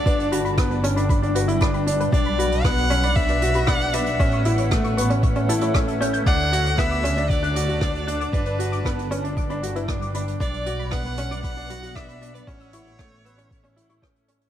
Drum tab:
HH |xxxxxxxxxxxxxxxx|xxxxxxxxxxxxxxxx|xxxxxxxxxxxxxxxx|xxxxxxxxxxxxxxxx|
SD |----r-------r---|----r-------r---|----r-------r---|----r-------r---|
BD |o---o---o---o---|o---o---o---o---|o---o---o---o---|o---o---o---o---|

HH |xxxxxxxxxxxxxxxx|xxxxxxxxxxxxxxxx|xxxxxxxxxxxxxxxx|
SD |----r-------r---|----r-------r---|----r-------r---|
BD |o---o---o---o---|o---o---o---o---|o---o---o---o---|